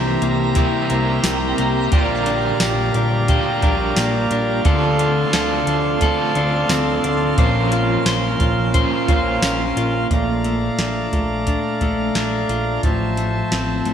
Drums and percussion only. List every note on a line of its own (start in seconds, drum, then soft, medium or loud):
0.22 closed hi-hat soft
0.55 kick medium
0.55 closed hi-hat medium
0.90 closed hi-hat soft
1.24 snare loud
1.24 closed hi-hat medium
1.24 tambourine medium
1.58 closed hi-hat medium
1.92 kick loud
1.92 closed hi-hat medium
2.26 closed hi-hat medium
2.60 snare loud
2.60 closed hi-hat medium
2.60 tambourine medium
2.94 closed hi-hat soft
3.28 kick medium
3.28 closed hi-hat medium
3.62 kick medium
3.62 closed hi-hat soft
3.96 snare loud
3.96 closed hi-hat medium
3.96 tambourine medium
4.31 closed hi-hat medium
4.65 kick loud
4.65 closed hi-hat medium
4.99 closed hi-hat medium
5.33 snare loud
5.33 closed hi-hat medium
5.33 tambourine medium
5.67 closed hi-hat medium
6.01 kick medium
6.01 closed hi-hat medium
6.35 closed hi-hat soft
6.69 snare loud
6.69 closed hi-hat medium
6.69 tambourine medium
7.04 closed hi-hat medium
7.38 kick loud
7.38 closed hi-hat medium
7.72 closed hi-hat medium
8.06 snare loud
8.06 closed hi-hat medium
8.06 tambourine medium
8.40 kick medium
8.40 closed hi-hat medium
8.74 kick medium
8.74 closed hi-hat medium
9.08 kick medium
9.08 closed hi-hat soft
9.42 snare loud
9.42 closed hi-hat medium
9.42 tambourine medium
9.77 closed hi-hat medium
10.11 kick loud
10.11 closed hi-hat medium
10.44 closed hi-hat soft
10.79 snare loud
10.79 closed hi-hat soft
11.13 kick medium
11.13 closed hi-hat soft
11.47 kick medium
11.47 closed hi-hat medium
11.81 kick medium
11.81 closed hi-hat soft
12.15 snare medium
12.15 closed hi-hat medium
12.49 closed hi-hat medium
12.83 kick loud
12.83 closed hi-hat medium
13.17 closed hi-hat soft
13.52 snare medium
13.52 closed hi-hat medium
13.85 closed hi-hat soft